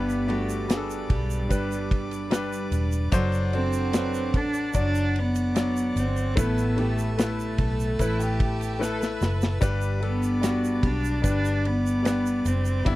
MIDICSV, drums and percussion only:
0, 0, Header, 1, 2, 480
1, 0, Start_track
1, 0, Key_signature, 1, "major"
1, 0, Tempo, 810811
1, 1852, Time_signature, 4, 2, 24, 8
1, 7670, End_track
2, 0, Start_track
2, 0, Title_t, "Drums"
2, 56, Note_on_c, 9, 82, 47
2, 115, Note_off_c, 9, 82, 0
2, 176, Note_on_c, 9, 51, 51
2, 235, Note_off_c, 9, 51, 0
2, 293, Note_on_c, 9, 82, 55
2, 352, Note_off_c, 9, 82, 0
2, 412, Note_on_c, 9, 51, 67
2, 415, Note_on_c, 9, 82, 71
2, 417, Note_on_c, 9, 38, 109
2, 471, Note_off_c, 9, 51, 0
2, 475, Note_off_c, 9, 82, 0
2, 477, Note_off_c, 9, 38, 0
2, 535, Note_on_c, 9, 82, 43
2, 594, Note_off_c, 9, 82, 0
2, 651, Note_on_c, 9, 36, 92
2, 651, Note_on_c, 9, 51, 62
2, 710, Note_off_c, 9, 36, 0
2, 710, Note_off_c, 9, 51, 0
2, 772, Note_on_c, 9, 82, 47
2, 831, Note_off_c, 9, 82, 0
2, 891, Note_on_c, 9, 36, 72
2, 891, Note_on_c, 9, 51, 61
2, 896, Note_on_c, 9, 82, 68
2, 950, Note_off_c, 9, 36, 0
2, 950, Note_off_c, 9, 51, 0
2, 955, Note_off_c, 9, 82, 0
2, 1016, Note_on_c, 9, 82, 50
2, 1076, Note_off_c, 9, 82, 0
2, 1132, Note_on_c, 9, 36, 90
2, 1135, Note_on_c, 9, 51, 56
2, 1191, Note_off_c, 9, 36, 0
2, 1194, Note_off_c, 9, 51, 0
2, 1251, Note_on_c, 9, 51, 42
2, 1257, Note_on_c, 9, 82, 43
2, 1310, Note_off_c, 9, 51, 0
2, 1316, Note_off_c, 9, 82, 0
2, 1368, Note_on_c, 9, 51, 65
2, 1374, Note_on_c, 9, 38, 106
2, 1382, Note_on_c, 9, 82, 63
2, 1427, Note_off_c, 9, 51, 0
2, 1433, Note_off_c, 9, 38, 0
2, 1441, Note_off_c, 9, 82, 0
2, 1496, Note_on_c, 9, 82, 44
2, 1556, Note_off_c, 9, 82, 0
2, 1610, Note_on_c, 9, 51, 62
2, 1612, Note_on_c, 9, 82, 48
2, 1669, Note_off_c, 9, 51, 0
2, 1672, Note_off_c, 9, 82, 0
2, 1729, Note_on_c, 9, 82, 43
2, 1788, Note_off_c, 9, 82, 0
2, 1847, Note_on_c, 9, 51, 78
2, 1849, Note_on_c, 9, 36, 121
2, 1851, Note_on_c, 9, 82, 75
2, 1906, Note_off_c, 9, 51, 0
2, 1908, Note_off_c, 9, 36, 0
2, 1910, Note_off_c, 9, 82, 0
2, 1965, Note_on_c, 9, 51, 41
2, 1973, Note_on_c, 9, 82, 43
2, 2024, Note_off_c, 9, 51, 0
2, 2033, Note_off_c, 9, 82, 0
2, 2091, Note_on_c, 9, 51, 50
2, 2150, Note_off_c, 9, 51, 0
2, 2207, Note_on_c, 9, 82, 58
2, 2266, Note_off_c, 9, 82, 0
2, 2328, Note_on_c, 9, 51, 65
2, 2332, Note_on_c, 9, 82, 72
2, 2334, Note_on_c, 9, 38, 112
2, 2387, Note_off_c, 9, 51, 0
2, 2392, Note_off_c, 9, 82, 0
2, 2393, Note_off_c, 9, 38, 0
2, 2452, Note_on_c, 9, 82, 45
2, 2512, Note_off_c, 9, 82, 0
2, 2568, Note_on_c, 9, 51, 59
2, 2569, Note_on_c, 9, 36, 93
2, 2628, Note_off_c, 9, 36, 0
2, 2628, Note_off_c, 9, 51, 0
2, 2687, Note_on_c, 9, 82, 49
2, 2746, Note_off_c, 9, 82, 0
2, 2803, Note_on_c, 9, 82, 61
2, 2809, Note_on_c, 9, 51, 62
2, 2810, Note_on_c, 9, 36, 77
2, 2862, Note_off_c, 9, 82, 0
2, 2868, Note_off_c, 9, 51, 0
2, 2869, Note_off_c, 9, 36, 0
2, 2929, Note_on_c, 9, 82, 48
2, 2988, Note_off_c, 9, 82, 0
2, 3053, Note_on_c, 9, 51, 59
2, 3112, Note_off_c, 9, 51, 0
2, 3170, Note_on_c, 9, 82, 44
2, 3171, Note_on_c, 9, 51, 43
2, 3229, Note_off_c, 9, 82, 0
2, 3230, Note_off_c, 9, 51, 0
2, 3289, Note_on_c, 9, 51, 70
2, 3294, Note_on_c, 9, 82, 64
2, 3295, Note_on_c, 9, 38, 110
2, 3349, Note_off_c, 9, 51, 0
2, 3353, Note_off_c, 9, 82, 0
2, 3354, Note_off_c, 9, 38, 0
2, 3414, Note_on_c, 9, 82, 45
2, 3473, Note_off_c, 9, 82, 0
2, 3532, Note_on_c, 9, 82, 50
2, 3533, Note_on_c, 9, 51, 59
2, 3591, Note_off_c, 9, 82, 0
2, 3592, Note_off_c, 9, 51, 0
2, 3650, Note_on_c, 9, 82, 39
2, 3709, Note_off_c, 9, 82, 0
2, 3770, Note_on_c, 9, 51, 80
2, 3771, Note_on_c, 9, 36, 124
2, 3776, Note_on_c, 9, 82, 72
2, 3829, Note_off_c, 9, 51, 0
2, 3830, Note_off_c, 9, 36, 0
2, 3836, Note_off_c, 9, 82, 0
2, 3896, Note_on_c, 9, 82, 44
2, 3955, Note_off_c, 9, 82, 0
2, 4012, Note_on_c, 9, 51, 50
2, 4071, Note_off_c, 9, 51, 0
2, 4134, Note_on_c, 9, 82, 54
2, 4193, Note_off_c, 9, 82, 0
2, 4254, Note_on_c, 9, 51, 62
2, 4259, Note_on_c, 9, 38, 118
2, 4260, Note_on_c, 9, 82, 66
2, 4313, Note_off_c, 9, 51, 0
2, 4319, Note_off_c, 9, 38, 0
2, 4319, Note_off_c, 9, 82, 0
2, 4378, Note_on_c, 9, 82, 43
2, 4437, Note_off_c, 9, 82, 0
2, 4488, Note_on_c, 9, 51, 61
2, 4490, Note_on_c, 9, 36, 94
2, 4548, Note_off_c, 9, 51, 0
2, 4550, Note_off_c, 9, 36, 0
2, 4618, Note_on_c, 9, 82, 46
2, 4677, Note_off_c, 9, 82, 0
2, 4730, Note_on_c, 9, 51, 57
2, 4732, Note_on_c, 9, 36, 69
2, 4739, Note_on_c, 9, 82, 65
2, 4790, Note_off_c, 9, 51, 0
2, 4791, Note_off_c, 9, 36, 0
2, 4799, Note_off_c, 9, 82, 0
2, 4856, Note_on_c, 9, 82, 51
2, 4916, Note_off_c, 9, 82, 0
2, 4973, Note_on_c, 9, 36, 95
2, 4974, Note_on_c, 9, 51, 59
2, 5033, Note_off_c, 9, 36, 0
2, 5034, Note_off_c, 9, 51, 0
2, 5096, Note_on_c, 9, 51, 43
2, 5103, Note_on_c, 9, 82, 46
2, 5156, Note_off_c, 9, 51, 0
2, 5162, Note_off_c, 9, 82, 0
2, 5222, Note_on_c, 9, 38, 59
2, 5227, Note_on_c, 9, 82, 62
2, 5281, Note_off_c, 9, 38, 0
2, 5286, Note_off_c, 9, 82, 0
2, 5341, Note_on_c, 9, 82, 43
2, 5346, Note_on_c, 9, 38, 65
2, 5400, Note_off_c, 9, 82, 0
2, 5405, Note_off_c, 9, 38, 0
2, 5455, Note_on_c, 9, 82, 51
2, 5462, Note_on_c, 9, 38, 86
2, 5515, Note_off_c, 9, 82, 0
2, 5521, Note_off_c, 9, 38, 0
2, 5573, Note_on_c, 9, 82, 42
2, 5583, Note_on_c, 9, 38, 91
2, 5633, Note_off_c, 9, 82, 0
2, 5642, Note_off_c, 9, 38, 0
2, 5693, Note_on_c, 9, 82, 74
2, 5694, Note_on_c, 9, 36, 124
2, 5695, Note_on_c, 9, 51, 75
2, 5752, Note_off_c, 9, 82, 0
2, 5753, Note_off_c, 9, 36, 0
2, 5755, Note_off_c, 9, 51, 0
2, 5810, Note_on_c, 9, 82, 46
2, 5870, Note_off_c, 9, 82, 0
2, 5935, Note_on_c, 9, 51, 54
2, 5994, Note_off_c, 9, 51, 0
2, 6055, Note_on_c, 9, 82, 56
2, 6114, Note_off_c, 9, 82, 0
2, 6174, Note_on_c, 9, 51, 69
2, 6177, Note_on_c, 9, 82, 73
2, 6180, Note_on_c, 9, 38, 107
2, 6234, Note_off_c, 9, 51, 0
2, 6236, Note_off_c, 9, 82, 0
2, 6239, Note_off_c, 9, 38, 0
2, 6302, Note_on_c, 9, 82, 44
2, 6361, Note_off_c, 9, 82, 0
2, 6412, Note_on_c, 9, 36, 90
2, 6412, Note_on_c, 9, 51, 61
2, 6471, Note_off_c, 9, 36, 0
2, 6472, Note_off_c, 9, 51, 0
2, 6537, Note_on_c, 9, 82, 50
2, 6596, Note_off_c, 9, 82, 0
2, 6652, Note_on_c, 9, 51, 61
2, 6653, Note_on_c, 9, 36, 78
2, 6659, Note_on_c, 9, 82, 67
2, 6711, Note_off_c, 9, 51, 0
2, 6712, Note_off_c, 9, 36, 0
2, 6718, Note_off_c, 9, 82, 0
2, 6779, Note_on_c, 9, 82, 48
2, 6838, Note_off_c, 9, 82, 0
2, 6898, Note_on_c, 9, 51, 53
2, 6957, Note_off_c, 9, 51, 0
2, 7024, Note_on_c, 9, 82, 43
2, 7083, Note_off_c, 9, 82, 0
2, 7135, Note_on_c, 9, 51, 68
2, 7141, Note_on_c, 9, 38, 109
2, 7141, Note_on_c, 9, 82, 65
2, 7194, Note_off_c, 9, 51, 0
2, 7200, Note_off_c, 9, 38, 0
2, 7200, Note_off_c, 9, 82, 0
2, 7260, Note_on_c, 9, 82, 44
2, 7319, Note_off_c, 9, 82, 0
2, 7374, Note_on_c, 9, 82, 51
2, 7375, Note_on_c, 9, 51, 61
2, 7433, Note_off_c, 9, 82, 0
2, 7434, Note_off_c, 9, 51, 0
2, 7491, Note_on_c, 9, 82, 44
2, 7550, Note_off_c, 9, 82, 0
2, 7614, Note_on_c, 9, 36, 117
2, 7614, Note_on_c, 9, 51, 80
2, 7670, Note_off_c, 9, 36, 0
2, 7670, Note_off_c, 9, 51, 0
2, 7670, End_track
0, 0, End_of_file